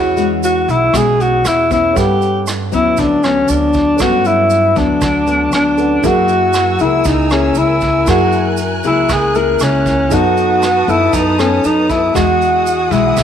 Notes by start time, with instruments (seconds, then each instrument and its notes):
Already playing: upright bass E2, nylon-string guitar E3 G#3 C#4 F#4, grand piano E4 G#4 C#5 F#5, alto saxophone F#4
0.17 nylon-string guitar G#3 C#4 F#4, closed hi-hat, shaker
0.43 alto saxophone F#4, closed hi-hat, shaker
0.68 upright bass B1, alto saxophone E4, closed hi-hat, shaker
0.93 upright bass B1, nylon-string guitar B2 G#3 C#4 F#4, alto saxophone G#4, kick, cross-stick, closed hi-hat, shaker
1.20 alto saxophone F#4, closed hi-hat, shaker
1.45 upright bass E2, alto saxophone E4, cross-stick, closed hi-hat, shaker
1.71 nylon-string guitar B3 C#4, alto saxophone E4, kick, closed hi-hat, shaker
1.93 nylon-string guitar G2, upright bass G2, alto saxophone G4, grand piano A4 C#5, kick, closed hi-hat, shaker
1.97 grand piano B4 F#5
2.22 closed hi-hat, shaker
2.47 cross-stick, closed hi-hat, shaker
2.72 upright bass D2, nylon-string guitar F#3 B3 C#4, alto saxophone E4, closed hi-hat, shaker
2.97 upright bass D2, nylon-string guitar D3, alto saxophone D4, kick, closed hi-hat, shaker
3.23 nylon-string guitar F#3 B3, alto saxophone C#4, cross-stick, closed hi-hat, shaker
3.48 upright bass D2, alto saxophone D4, closed hi-hat, shaker
3.73 kick, closed hi-hat, shaker
3.97 nylon-string guitar G2 F#3 B3, upright bass G2, grand piano A4 B4 C#5, kick, cross-stick, closed hi-hat, shaker
4.01 nylon-string guitar C#4, alto saxophone F#4, grand piano F#5
4.25 alto saxophone E4, closed hi-hat, shaker
4.50 closed hi-hat, shaker
4.76 upright bass D2, nylon-string guitar F#3 B3, alto saxophone D4, kick, closed hi-hat, shaker
5.01 upright bass D2, nylon-string guitar D3, kick, cross-stick, closed hi-hat, shaker
5.27 nylon-string guitar F#3 B3, closed hi-hat, shaker
5.52 upright bass D2, alto saxophone D4, cross-stick, closed hi-hat, shaker
5.76 grand piano C#4 A4 B4 F#5, closed hi-hat, shaker
6.00 upright bass F#2, nylon-string guitar F#3 A#3 E4 G#4, grand piano E4 G#4 A#4, violin section A#4 G#5 E6, kick, closed hi-hat, shaker
6.06 alto saxophone F#4, grand piano F#5
6.28 closed hi-hat, shaker
6.53 cross-stick, closed hi-hat, shaker
6.79 upright bass C#2, nylon-string guitar A#3 E4 G#4, alto saxophone E4, closed hi-hat, shaker
7.04 upright bass C#2, nylon-string guitar C#3, alto saxophone D#4, kick, closed hi-hat, shaker
7.30 nylon-string guitar A#3 E4 G#4, alto saxophone C#4, cross-stick, closed hi-hat, shaker
7.55 upright bass C#2, alto saxophone E4, closed hi-hat, shaker
7.81 kick, closed hi-hat, shaker
8.05 upright bass F#2, nylon-string guitar F#3 A#3 E4 G#4, grand piano E4 G#4 A#4, violin section F#6, kick, cross-stick, closed hi-hat, shaker
8.09 alto saxophone F#4, grand piano F#5
8.32 closed hi-hat, shaker
8.57 closed hi-hat, shaker
8.83 upright bass C#2, nylon-string guitar A#3 E4 G#4, alto saxophone E4, closed hi-hat, shaker
9.09 upright bass C#2, nylon-string guitar C#3, alto saxophone G#4, kick, cross-stick, closed hi-hat, shaker
9.35 nylon-string guitar A#3 E4 G#4, alto saxophone A#4, closed hi-hat, shaker
9.59 upright bass C#2, alto saxophone C#4, cross-stick, closed hi-hat, shaker
9.86 kick, closed hi-hat, shaker
10.09 upright bass F#2, nylon-string guitar F#3 B3 D#4 A4, grand piano D#4 A4 B4, alto saxophone F#4, violin section B4 A5 D#6, kick, closed hi-hat, shaker
10.15 grand piano F#5
10.37 closed hi-hat, shaker
10.62 cross-stick, closed hi-hat, shaker
10.87 upright bass F#2, nylon-string guitar B3 D#4 A4, alto saxophone E4, closed hi-hat, shaker
11.13 upright bass F#2, nylon-string guitar F#3, alto saxophone D#4, kick, closed hi-hat, shaker
11.38 nylon-string guitar B3 D#4 A4, alto saxophone C#4, cross-stick, closed hi-hat, shaker
11.64 upright bass F#2, alto saxophone D#4, closed hi-hat, shaker
11.90 alto saxophone E4, kick, closed hi-hat, shaker
12.14 upright bass E2, nylon-string guitar E3 G#3 D#4 F#4, alto saxophone F#4, grand piano G#4 D#5 F#5, violin section G#4 F#5 D#6, kick, cross-stick, closed hi-hat, shaker
12.41 closed hi-hat, shaker
12.66 closed hi-hat, shaker
12.91 upright bass B1, nylon-string guitar G#3 F#4, alto saxophone E4, kick, closed hi-hat, shaker
13.16 upright bass B1, nylon-string guitar B2, kick, cross-stick, closed hi-hat, shaker